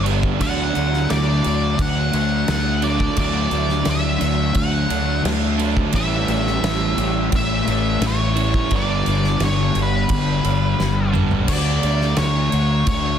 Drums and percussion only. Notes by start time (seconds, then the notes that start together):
0.06 crash
0.23 kick
0.41 kick, crash
0.75 crash
0.94 snare
1.10 snare, crash
1.44 crash
1.79 kick, crash
2.13 crash
2.48 snare, crash
2.82 crash
3.00 kick
3.17 kick, crash
3.51 crash
3.69 snare
3.85 snare, crash
4.21 crash
4.55 kick, crash
4.90 crash
5.25 snare, crash
5.59 crash
5.77 kick
5.93 kick, crash
6.28 crash
6.47 snare
6.64 snare, crash
6.98 crash
7.32 kick, crash
7.67 crash
8.02 snare, crash
8.37 crash
8.54 kick
8.71 kick, crash
9.06 crash
9.24 snare
9.40 snare, crash
9.75 crash
10.09 kick, crash
10.45 crash
10.80 snare
11.14 mid tom
11.31 floor tom
11.48 kick, crash
11.83 crash
12.01 snare
12.16 snare, crash
12.52 crash
12.87 kick, crash